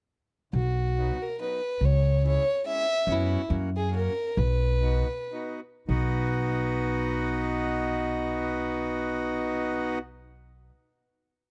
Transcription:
0.53 B1 F#4
0.97 F#3 B3 D#4
1.22 A#4
1.39 F#3 B3 D#4 B4
1.81 C#2
1.85 C#5
2.22 G#3 C#4 E4
2.27 C#5
2.64 G#3 C#4 E4 E5
3.07 F#2 B3 C#4 F#4
3.12 E4
3.48 F#2 A#3 C#4 F#4
3.77 G#4
3.89 A#3 C#4 F#4
3.96 A#4
4.37 B1 B4
4.82 B3 D#4 F#4
5.32 B3 D#4 F#4
5.88 B1 B3 D#4 F#4

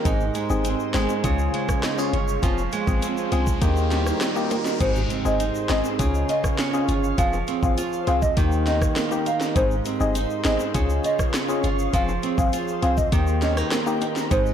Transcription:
Already playing: D#3 G3 A#3
0.05 G#1 G#2 C4 D#4 G#4 C5 D#5 C6, kick, closed hi-hat, riser, shaker
0.20 shaker
0.35 G#3, closed hi-hat, shaker
0.50 G1 C4 D#4 G#4, shaker
0.65 C4, closed hi-hat, shaker
0.80 shaker
0.94 G#1 G#3 C4 D#4 G#4, snare, closed hi-hat, shaker
1.09 shaker
1.24 C#2 C#3 C#4 F4 G#4 C#5 F5 C#6, kick, closed hi-hat, shaker
1.39 shaker
1.54 G#3, closed hi-hat
1.69 kick, cross-stick, shaker
1.83 D#4, snare, closed hi-hat, shaker
1.98 C#4 F4 G#4, shaker
2.13 G1 C#4, closed hi-hat
2.28 shaker
2.43 F1 F3 C4 F4 G#4 C5 F5 C6, kick, closed hi-hat, shaker
2.58 shaker
2.72 G#3, closed hi-hat, shaker
2.87 G#1 C4 F4 G#4, kick, shaker
3.02 C4, closed hi-hat, shaker
3.17 shaker
3.32 C2 G#3 C4 F4 G#4, closed hi-hat, shaker
3.47 kick, shaker
3.61 D#2 D#3 A#3 D#4 G4 A#4 D#5 A#5, kick, closed hi-hat, shaker
3.76 shaker
3.91 G3, snare, closed hi-hat, shaker
4.06 cross-stick, shaker
4.21 D#4, snare, closed hi-hat, shaker
4.36 A#3 D#4 G4, shaker
4.51 A#3, closed hi-hat, high timbale, shaker
4.66 snare, shaker
4.80 G#1 G#2 C4 D#4 G#4 C5 D#5 C6, kick, closed hi-hat, crash, impact, shaker
4.96 shaker
5.10 C4, closed hi-hat, shaker
5.25 G1 C4 D#4 G#4 D#5, shaker
5.40 D#4, closed hi-hat, shaker
5.55 shaker
5.69 G#1 C4 D#4 G#4 D#5, snare, closed hi-hat, shaker
5.85 shaker
5.99 C#2 C#3 C#4 F4 G#4 C#5 F5 C#6, kick, closed hi-hat, shaker
6.14 shaker
6.29 F4 D#5, closed hi-hat, shaker
6.44 kick, cross-stick, shaker
6.59 C#4, snare, closed hi-hat, shaker
6.73 C#4 F4 G#4, shaker
6.88 G1 F4, closed hi-hat, shaker
7.04 shaker
7.18 F1 F3 C4 F4 G#4 C5 F5 C6, kick, closed hi-hat, shaker
7.33 high timbale, shaker
7.48 C4, closed hi-hat, shaker
7.62 G#1 C4 F4 G#4 F5, kick, shaker
7.78 F4, closed hi-hat, shaker
7.93 shaker
8.07 C2 C4 F4 G#4 F5, closed hi-hat, shaker
8.22 D#5, kick, shaker
8.37 D#2 D#3 A#3 D#4 G4 A#4 D#5 A#5, kick, closed hi-hat, shaker
8.52 shaker
8.67 D#4 D#5, snare, closed hi-hat, shaker
8.82 kick, cross-stick, shaker
8.96 A#3, snare, closed hi-hat, shaker
9.11 A#3 D#4 G4, shaker
9.26 D#4 F5, closed hi-hat, shaker
9.41 snare, shaker
9.55 G#1 G#2 C4 D#4 G#4 C5 C6, kick, closed hi-hat, shaker
9.71 shaker
9.85 C4, closed hi-hat, shaker
10.00 G1 C4 D#4 G#4 D#5, shaker
10.15 D#4, closed hi-hat, shaker
10.30 shaker
10.45 G#1 C4 D#4 G#4 D#5, snare, closed hi-hat, shaker
10.60 shaker
10.74 C#2 C#3 C#4 F4 G#4 C#5 F5 C#6, kick, closed hi-hat, shaker
10.89 shaker
11.04 F4 D#5, closed hi-hat, shaker
11.19 kick, cross-stick, shaker
11.34 C#4, snare, closed hi-hat, shaker
11.49 C#4 F4 G#4, shaker
11.64 G1 F4, closed hi-hat, shaker
11.79 shaker
11.93 F1 F3 C4 F4 G#4 C5 F5 C6, kick, closed hi-hat, shaker
12.09 high timbale, shaker
12.23 C4, closed hi-hat, shaker
12.38 G#1 C4 F4 G#4 F5, kick, shaker
12.53 F4, closed hi-hat, shaker
12.68 shaker
12.82 C2 C4 F4 G#4 F5, closed hi-hat, shaker
12.97 D#5, kick, shaker
13.12 D#2 D#3 A#3 D#4 G4 A#4 D#5 A#5, kick, closed hi-hat, shaker
13.27 shaker
13.42 C#4 D#5, snare, closed hi-hat, shaker
13.57 D#4, cross-stick, shaker
13.72 A#3, snare, closed hi-hat, high timbale, shaker
13.86 A#3 D#4 G4, shaker
14.01 D#4, closed hi-hat, high timbale, shaker
14.16 snare, shaker
14.31 G#1 G#2 C4 D#4 G#4 C5 C6, kick, closed hi-hat, shaker
14.46 shaker

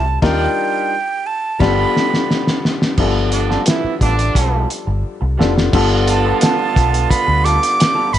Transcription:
Already playing: C2 G3 C4 E4 F4 A4 A5
0.06 muted clean electric guitar stroke
0.22 D#2 F3 G3 A#3 D4 D#4 F4 G4 A#4 G5, kick, snare, crash
1.27 A5
1.59 G1 F3 G3 B3 D4 F4 G4 A4 B5, kick, snare, crash
1.68 A4
1.97 snare
2.14 snare
2.31 snare
2.47 snare
2.65 snare
2.82 snare
2.97 G1 F3 G3 B3 D4 F4 A4, kick, crash
3.16 muted clean electric guitar stroke
3.32 D3 D4, muted clean electric guitar stroke, closed hi-hat
3.49 G3 B3 F4 A4, snare
3.66 E3 E4, muted clean electric guitar stroke, snare, closed hi-hat
3.84 muted fingered electric bass stroke
4.01 A1 D3 G3 B3 D4 F4 A4, kick, closed hi-hat
4.18 muted clean electric guitar stroke, closed hi-hat
4.34 B1 G3 B3 F4 A4, kick, closed hi-hat
4.70 muted clean electric guitar stroke, closed hi-hat
4.87 G1, muted clean electric guitar stroke
5.21 C2, muted clean electric guitar stroke
5.38 F1 G3 B3 D4 F4 A4, snare
5.56 muted clean electric guitar stroke, snare
5.73 G1 D3 G3 B3 D4 F4 A4, kick, crash
5.91 muted clean electric guitar stroke
6.08 A5, muted clean electric guitar stroke, closed hi-hat
6.24 G3 B3 F4 A4
6.41 G3 B3 F4 A4 A5, snare, closed hi-hat
6.59 muted clean electric guitar stroke
6.75 B1 G3 B3 F4 A4, kick, closed hi-hat
6.92 muted clean electric guitar stroke, closed hi-hat
7.10 B5, muted fingered electric bass stroke, kick, closed hi-hat
7.27 D2, muted clean electric guitar stroke
7.44 G3 B3 F4 A4 D6, closed hi-hat
7.62 muted clean electric guitar stroke, closed hi-hat
7.79 muted clean electric guitar stroke, snare, closed hi-hat
7.95 G3 B3 F4 A4
8.13 G1 B5, muted clean electric guitar stroke, closed hi-hat

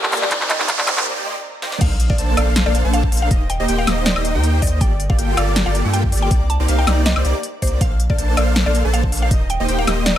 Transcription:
Already playing: G3 A#3 D4 F4 G4 A4 A#4 D5 G5 A5, riser
0.03 clap
0.12 A#3 F4 G4 A4 D5, clap, open hi-hat
0.17 closed hi-hat
0.22 D5, clap
0.29 C3 C4 D#4 A#4, kick, clap, closed hi-hat
0.33 D5
0.41 clap
0.50 D#5, clap, closed hi-hat
0.60 A#3 D#4 G4 C5 D5, clap
0.68 A#3 D#4 G4 F5, kick, clap, closed hi-hat
0.79 D5, clap
0.87 A#3 D#4 G4 C5 D5, clap, closed hi-hat, high woodblock
0.97 clap
1.16 A#3 D#4 G4 C5 D5
1.25 A#3 D#4 G4 C5 D5
1.62 A#3 D#4 G4 C5 D5, snare
1.72 snare
1.81 A#1 A#3 D4 A4 F5, kick, closed hi-hat, crash, sub drop
2.00 closed hi-hat
2.10 A#1 A#3 D4 A4 C5 D5 F5, kick
2.18 A#1 A#3 D4 A4 C5 A5, closed hi-hat
2.37 A#1 A#3 D4 A4 C5 D5 F5, closed hi-hat, high woodblock
2.56 snare, closed hi-hat
2.66 A#1 A#3 D4 A4 C5 D5 F5
2.75 closed hi-hat
2.85 A#1 A#3 D4 A4 C5 A5
2.93 F5, closed hi-hat
3.03 kick
3.12 A#1 A#3 D4 A4 C5 F5, open hi-hat
3.17 closed hi-hat
3.22 F5
3.31 D#1 A#3 D#4 G4 C5 D#5, kick, closed hi-hat
3.50 G5, closed hi-hat
3.60 D#1 A#3 D#4 G4 C5 D#5
3.68 D#1 A#3 D#4 G4 C5 G5, closed hi-hat
3.78 F5
3.87 D#1 A#3 D#4 G4 C5 D#5, snare, closed hi-hat, high woodblock
4.06 D5, snare, closed hi-hat
4.16 D#1 A#3 D#4 G4 C5 D#5, high woodblock
4.25 closed hi-hat
4.35 D#2 A#3 D#4 G4 C5 G5
4.44 closed hi-hat
4.62 D#2 D5 D#5, kick, open hi-hat
4.67 closed hi-hat
4.81 G1 A#3 F4 G4 A4 D5 G5, kick, closed hi-hat
5.00 closed hi-hat
5.10 G1 A#3 F4 G4 A4 D5 F5, kick
5.18 G1 A#3 F4 G4 A4 G5, closed hi-hat
5.37 G1 A#3 F4 G4 A4 D5 F5, closed hi-hat, high woodblock
5.56 snare, closed hi-hat
5.66 G1 A#3 F4 G4 A4 D5 F5
5.75 closed hi-hat
5.85 G2 A#3 F4 G4 A4 G5
5.93 G5, closed hi-hat
6.04 kick
6.12 G1 A#3 F4 G4 A4 D5, open hi-hat
6.17 closed hi-hat
6.22 G5
6.31 C2 A#3 D#4 G4 C5 D5, kick, closed hi-hat
6.50 A5, closed hi-hat
6.60 C2 A#3 D#4 G4 C5 D5
6.68 C2 A#3 D#4 G4 C5 F5, closed hi-hat
6.79 G5
6.87 C2 A#3 D#4 G4 C5 D5, snare, closed hi-hat, high woodblock
7.06 D#5, snare, closed hi-hat
7.16 C2 A#3 D#4 G4 C5 D5, high woodblock
7.25 C2 A#3 D#4 G4 C5 D5, closed hi-hat
7.43 closed hi-hat
7.62 C2 A#3 D#4 G4 C5 D5, kick, open hi-hat
7.67 closed hi-hat
7.81 A#1 A#3 D4 A4 C5 F5, kick, closed hi-hat
8.00 closed hi-hat
8.10 A#1 A#3 D4 A4 C5 D5 F5, kick
8.18 A#1 A#3 D4 A4 C5 A5, closed hi-hat
8.37 A#1 A#3 D4 A4 C5 D5 F5, closed hi-hat, high woodblock
8.56 snare, closed hi-hat
8.66 A#1 A#3 D4 A4 C5 D5 F5
8.75 closed hi-hat
8.85 A#1 A#3 D4 A4 C5 A5
8.94 F5, closed hi-hat
9.04 kick
9.12 A#1 A#3 D4 A4 C5 F5, open hi-hat
9.17 closed hi-hat
9.22 F5
9.31 D#1 A#3 D#4 G4 D#5, kick, closed hi-hat
9.50 G5, closed hi-hat
9.60 D#1 A#3 D#4 G4 C5 D#5
9.68 D#1 A#3 D#4 G4 C5 G5, closed hi-hat
9.79 F5
9.87 D#1 A#3 D#4 G4 C5 D#5, snare, closed hi-hat, high woodblock
10.06 D5, snare, closed hi-hat

